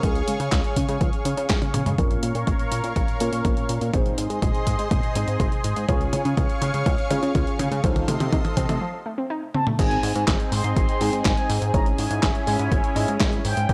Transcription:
Already playing: G#4 C#5 F5 C#6
0.03 C#2 F3 G#4, kick, closed hi-hat
0.15 closed hi-hat
0.28 C#3 G#3, closed hi-hat
0.40 C#3 C#4, closed hi-hat
0.52 C#2 F4, kick, snare, clap, closed hi-hat
0.64 closed hi-hat
0.76 C#3 C#4, kick, closed hi-hat
0.89 C#3 G#3, closed hi-hat
1.01 C#2 F3, kick, closed hi-hat
1.13 closed hi-hat
1.25 C#3 C#4, closed hi-hat
1.37 C#3 C#4, closed hi-hat
1.49 C#2 C#4, kick, snare, clap, closed hi-hat
1.62 C#4, closed hi-hat, high tom
1.74 C#3 C#5, closed hi-hat, mid tom
1.86 C#3 G#3, closed hi-hat, mid tom
1.98 A#1 F3 A#3 C#4 F4 A#4 C#5 F5 C#6, kick, closed hi-hat, mid tom
2.11 closed hi-hat
2.23 A#2 A#3, closed hi-hat
2.35 A#2 C#4, closed hi-hat
2.47 A#1 F4, kick, closed hi-hat, mid tom
2.59 closed hi-hat
2.72 A#2 C#4, closed hi-hat
2.84 A#2 A#3, closed hi-hat
2.96 A#1 F3, kick, closed hi-hat, mid tom
3.08 closed hi-hat
3.20 A#2 A#3 C#4 F4 A#4, closed hi-hat
3.33 A#2 C#4, closed hi-hat
3.45 A#1 F4, kick, closed hi-hat, mid tom
3.57 closed hi-hat
3.69 A#2 C#4, closed hi-hat
3.81 A#2 A#3, closed hi-hat
3.93 G#1 G#3 C4 D#4 G#4 C5 D#5 C6, kick, closed hi-hat, mid tom
4.06 closed hi-hat
4.18 G#2 C4, closed hi-hat
4.30 G#2 D#4, closed hi-hat
4.42 G#1 G#4, kick, closed hi-hat, mid tom
4.55 closed hi-hat
4.67 G#2 D#4, kick, closed hi-hat
4.79 G#2 C4, closed hi-hat
4.91 G#1 G#3, kick, closed hi-hat, mid tom
5.03 closed hi-hat
5.15 G#2 C4 D#4 G#4 D#5, closed hi-hat
5.28 G#2 D#4, closed hi-hat
5.40 G#1 G#4, kick, closed hi-hat, mid tom
5.52 closed hi-hat
5.64 G#2 D#4, closed hi-hat
5.76 G#2 C4, closed hi-hat
5.88 C#2 F3 C#4 F4 G#4 C#5 F5 C#6, kick, closed hi-hat, mid tom
6.01 closed hi-hat
6.13 C#3 G#3, closed hi-hat, mid tom
6.25 C#3 C#4, closed hi-hat
6.37 C#2 F4, kick, closed hi-hat, mid tom
6.50 closed hi-hat
6.62 C#3 C#4, closed hi-hat, mid tom
6.74 C#3 G#3, closed hi-hat
6.86 C#2 F3, kick, closed hi-hat, mid tom
6.98 closed hi-hat
7.11 C#3 G#3 C#4 F4 G#4 C#5, closed hi-hat, mid tom
7.23 C#3 C#4, closed hi-hat
7.35 C#2 F4, kick, closed hi-hat, mid tom
7.47 closed hi-hat
7.59 C#3 C#4, closed hi-hat, mid tom
7.72 C#3 G#3, closed hi-hat
7.84 C2 F3 D#4 F4 A4 C5 D#5 C6, kick, closed hi-hat, mid tom
7.96 closed hi-hat, mid tom
8.08 C3 A3, closed hi-hat, mid tom
8.20 C3 C4, closed hi-hat, mid tom
8.32 C2 D#4, kick, closed hi-hat, mid tom
8.45 closed hi-hat, mid tom
8.57 C3 C4, kick, closed hi-hat, mid tom
8.69 C3 A3, closed hi-hat, mid tom
8.81 F3
9.06 A3
9.18 C4
9.30 D#4
9.54 C4 A5, high tom
9.67 A3, mid tom
9.79 G#1 G#3 C4 D#4 G#4 G#5, kick, closed hi-hat, crash
9.91 closed hi-hat
10.03 G#2, open hi-hat
10.15 G#2, closed hi-hat
10.28 G#1, kick, snare, clap, closed hi-hat
10.40 closed hi-hat
10.52 G#2 C6, open hi-hat
10.64 G#2, closed hi-hat
10.76 G#1 C6, kick, closed hi-hat
10.89 closed hi-hat
11.01 G#2 G#3 C4 D#4 G#4, open hi-hat
11.13 G#2, closed hi-hat
11.25 G#1 G#5, kick, snare, clap, closed hi-hat
11.37 closed hi-hat
11.50 G#2, open hi-hat
11.62 G#2, closed hi-hat
11.74 G#1 C#4 E4 G#4 C#5 A#5, kick, closed hi-hat
11.86 closed hi-hat
11.98 G#2 G#5, open hi-hat
12.11 G#2, closed hi-hat
12.23 G#1, kick, snare, clap, closed hi-hat
12.35 closed hi-hat
12.47 G#2 G#5, open hi-hat
12.59 G#2, closed hi-hat
12.72 G#1, kick, closed hi-hat
12.84 closed hi-hat
12.96 G#2 C#4 E4 G#4 D#5, open hi-hat
13.08 G#2, closed hi-hat
13.20 G#1, kick, snare, clap, closed hi-hat
13.33 closed hi-hat
13.44 G#2 G5, open hi-hat
13.57 G#2, closed hi-hat
13.69 G#1 A#3 D#4 G4 A#4, kick, closed hi-hat

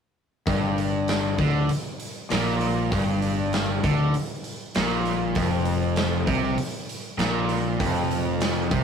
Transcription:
0.47 G1 G2, kick, open hi-hat
0.78 open hi-hat
1.08 snare, open hi-hat
1.38 D2 D3, kick, open hi-hat
1.69 muted picked electric bass stroke, muted overdriven electric guitar stroke, open hi-hat
2.00 open hi-hat
2.30 A#1 A#2, snare, open hi-hat
2.61 open hi-hat
2.91 G1 G2, kick, open hi-hat
3.22 open hi-hat
3.53 snare, open hi-hat
3.83 D2 D3, kick, open hi-hat
4.14 muted overdriven electric guitar stroke, muted picked electric bass stroke, open hi-hat
4.44 open hi-hat
4.75 A#1 A#2, snare, open hi-hat
5.06 open hi-hat
5.35 F1 F2, kick, open hi-hat
5.65 open hi-hat
5.96 snare, open hi-hat
6.26 C2 C3, kick, open hi-hat
6.58 muted picked electric bass stroke, muted overdriven electric guitar stroke, open hi-hat
6.89 open hi-hat
7.18 A#1 A#2, snare, open hi-hat
7.49 open hi-hat
7.79 F1 F2, kick, open hi-hat
8.11 open hi-hat
8.41 snare, open hi-hat
8.71 C2 C3, kick, open hi-hat

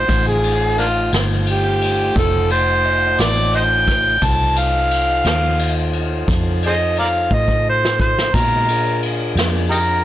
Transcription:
Already playing: C5
0.08 A1 A3 D#4 F4 C5, kick, ride
0.28 G#4
0.44 ride
0.78 A#3 D4 F4, ride
1.12 G1, snare, ride
1.47 G4, ride
1.81 ride
2.16 F1 A4, kick, ride
2.50 C5, ride
2.85 ride
3.18 A1 D5, snare, ride
3.53 C5 D#5 G5, ride
3.87 kick, snare, ride
4.22 C2 D#4 F4 A4 C5 A5, kick, ride
4.56 F5, ride
4.91 ride
5.25 D#2, snare, ride
5.59 ride
5.93 ride
6.28 F2, kick, ride
6.63 G#4 C5 D#5, ride
6.96 A#4 D5 F5, ride
7.31 A2 D#5, kick
7.48 kick
7.69 C5
7.85 snare
8.00 C5, kick
8.19 snare
8.34 A#2 G#3 B3 D#4 F#4 A#4, kick, ride
8.69 D4 F4 G#4 A#4, ride
9.03 ride
9.36 F2, snare, ride
9.70 D#4 G4 A#4, ride

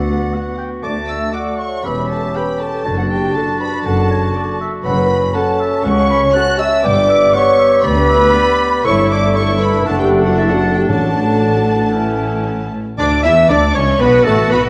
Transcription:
Already playing: D2 B3 F#4 D5 F#5
0.34 B3 F#4 F#5
0.58 G5
0.83 D2 A3 D5 A5 D6
1.08 E5 E6
1.33 A3 F#4 D5 F#5 D6
1.59 C#5 C#6
1.83 E1 E2 C#4 G4 B4 E5 B5
2.09 A4 A5
2.34 C#4 G4 B4 G5 B5
2.59 A4 A5
2.85 F#1 F#2 D4 F#4 A5
2.97 F#4 F#5
3.09 G4 G5
3.34 D4 A4 A5
3.60 B4 B5
3.84 F#1 F#2 A4 F#5 A5
4.11 C#5
4.35 D4 A4 D5
4.60 E5
4.84 F#1 F#2 C#4 B4 F#5 B5
5.34 C#4 A4 F#5 A5
5.60 E5
5.84 C#2 C#5 F#5 C#6
6.10 B5
6.34 C#4 F#4 A4 A5 F#6
6.59 E5 E6
6.83 G1 G2 B3 G4 D5 G5 D6
7.09 E5
7.33 B3 G4 C#5 F#5 C#6
7.58 E5
7.83 D2 B4 D5 B5
8.09 E5
8.33 B3 G4 D5
8.84 G1 G2 A3 E4 A4 C#5 E5 C#6
9.10 D5 D6
9.35 E4 A4 C#5 C#6
9.60 B4 B5
9.85 F#1 F#2 D4 A4 F#5 A5
9.99 G4 G5
10.24 F#4 F#5
10.37 E4 E5 A5
10.49 F#4 F#5
10.76 G4 G5
10.89 A1 A2 F#3 D4 F#4 A4 F#5 A5
11.93 E3 C#4 E4
12.98 D2 D4 D5 D6
13.23 E2 E4 E5 E6
13.48 D2 D4 D5 D6
13.74 C#2 C#4 C#5 C#6
13.99 B1 B3 F#4 B4 B5
14.24 A1 A3 A4 A5
14.50 B1 B3 B4 B5

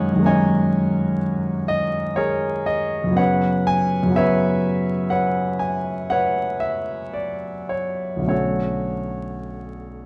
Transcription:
Already playing: F#2 D#3 G#3 A#3 C#4 C#5 D#5 F#5 G#5
0.13 F#2 D#3
0.19 G#3 A#3
0.25 C#4 C#5 D#5 G#5
1.68 D#5
2.16 G#4 A#4 C#5
2.66 D#5
3.04 F#2 C#3
3.10 F#3 B3
3.16 C#4 B4 C#5 F#5
3.67 G#5
4.03 F#2 C#3
4.10 F#3 B3
4.15 C#4 B4 C#5 E5
5.10 B4 C#5 F#5
5.59 G#5
6.10 B4 C#5 F#5
6.60 E5
7.13 D5
7.69 C#5
8.16 B1 D3
8.22 F#3 A3
8.28 C#4 F#4 A4 C#5

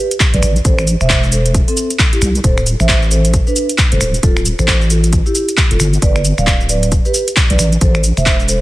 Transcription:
0.11 closed hi-hat, cabasa
0.20 kick, clap, open hi-hat, cabasa
0.34 B1 B4 D5, closed hi-hat, cabasa
0.43 A1, finger snap, open hi-hat, cabasa
0.56 closed hi-hat, cabasa
0.65 A1 A4 C5, kick, closed hi-hat, cabasa
0.79 finger snap, cabasa
0.87 open hi-hat, cabasa
1.01 E1 C5 E5, finger snap, cabasa
1.10 kick, clap, cabasa
1.23 cabasa
1.32 A4 C5, open hi-hat, cabasa
1.46 closed hi-hat, cabasa
1.55 kick, closed hi-hat, cabasa
1.68 C4 A4, open hi-hat, cabasa
1.77 open hi-hat, cabasa
1.91 closed hi-hat, cabasa
1.99 kick, clap, cabasa
2.13 E4 G4, closed hi-hat, cabasa
2.22 C2, finger snap, open hi-hat, cabasa
2.35 closed hi-hat, cabasa
2.44 D1 A4 C5, kick, closed hi-hat, cabasa
2.58 finger snap, cabasa
2.66 open hi-hat, cabasa
2.80 A1 C5 E5, finger snap, cabasa
2.89 kick, clap, cabasa
3.02 cabasa
3.11 A4 C5, open hi-hat, cabasa
3.25 closed hi-hat, cabasa
3.34 kick, closed hi-hat, cabasa
3.47 D4 B4, cabasa
3.56 open hi-hat, cabasa
3.69 closed hi-hat, cabasa
3.78 kick, clap, open hi-hat, cabasa
3.92 F1 A4 C5, closed hi-hat, cabasa
4.01 D1, finger snap, open hi-hat, cabasa
4.14 closed hi-hat, cabasa
4.23 D1 F4 A4, kick, closed hi-hat, cabasa
4.37 finger snap, cabasa
4.45 open hi-hat, cabasa
4.59 A1 A4 C5, finger snap, cabasa
4.68 kick, clap, cabasa
4.81 cabasa
4.90 F4 A4, open hi-hat, cabasa
5.04 closed hi-hat, cabasa
5.13 kick, closed hi-hat, cabasa
5.26 E4 G4, cabasa
5.35 open hi-hat, cabasa
5.49 closed hi-hat, cabasa
5.57 kick, clap, cabasa
5.71 F1 F4 A4, closed hi-hat, cabasa
5.80 G1, finger snap, open hi-hat, cabasa
5.93 closed hi-hat, cabasa
6.02 G1 B4 D5, kick, closed hi-hat, cabasa
6.16 finger snap, cabasa
6.25 open hi-hat, cabasa
6.38 D1 D5 F5, finger snap, cabasa
6.47 kick, clap, cabasa
6.61 cabasa
6.69 B4 D5, open hi-hat, cabasa
6.83 closed hi-hat, cabasa
6.92 kick, closed hi-hat, cabasa
7.05 G4 B4, cabasa
7.14 open hi-hat, cabasa
7.28 closed hi-hat, cabasa
7.37 kick, clap, open hi-hat, cabasa
7.50 B1 B4 D5, closed hi-hat, cabasa
7.59 A1, finger snap, open hi-hat, cabasa
7.73 closed hi-hat, cabasa
7.81 A1 A4 C5, kick, closed hi-hat, cabasa
7.95 finger snap, cabasa
8.04 open hi-hat, cabasa
8.17 E1 C5 E5, finger snap, cabasa
8.26 kick, clap, cabasa
8.40 cabasa
8.49 A4 C5, open hi-hat, cabasa

